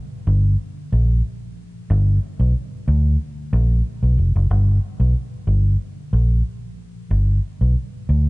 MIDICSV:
0, 0, Header, 1, 2, 480
1, 0, Start_track
1, 0, Tempo, 650759
1, 1402, Time_signature, 4, 2, 24, 8
1, 6117, End_track
2, 0, Start_track
2, 0, Title_t, "Fingered electric bass"
2, 0, Program_c, 0, 33
2, 200, Note_on_c, 0, 31, 100
2, 406, Note_off_c, 0, 31, 0
2, 682, Note_on_c, 0, 34, 92
2, 887, Note_off_c, 0, 34, 0
2, 1404, Note_on_c, 0, 31, 109
2, 1608, Note_off_c, 0, 31, 0
2, 1767, Note_on_c, 0, 35, 91
2, 1864, Note_off_c, 0, 35, 0
2, 2122, Note_on_c, 0, 38, 103
2, 2327, Note_off_c, 0, 38, 0
2, 2603, Note_on_c, 0, 34, 105
2, 2807, Note_off_c, 0, 34, 0
2, 2970, Note_on_c, 0, 35, 82
2, 3066, Note_off_c, 0, 35, 0
2, 3082, Note_on_c, 0, 29, 81
2, 3190, Note_off_c, 0, 29, 0
2, 3214, Note_on_c, 0, 30, 86
2, 3308, Note_off_c, 0, 30, 0
2, 3324, Note_on_c, 0, 31, 111
2, 3528, Note_off_c, 0, 31, 0
2, 3686, Note_on_c, 0, 35, 96
2, 3783, Note_off_c, 0, 35, 0
2, 4037, Note_on_c, 0, 31, 98
2, 4244, Note_off_c, 0, 31, 0
2, 4521, Note_on_c, 0, 34, 89
2, 4726, Note_off_c, 0, 34, 0
2, 5241, Note_on_c, 0, 31, 98
2, 5447, Note_off_c, 0, 31, 0
2, 5614, Note_on_c, 0, 35, 81
2, 5708, Note_off_c, 0, 35, 0
2, 5968, Note_on_c, 0, 38, 84
2, 6117, Note_off_c, 0, 38, 0
2, 6117, End_track
0, 0, End_of_file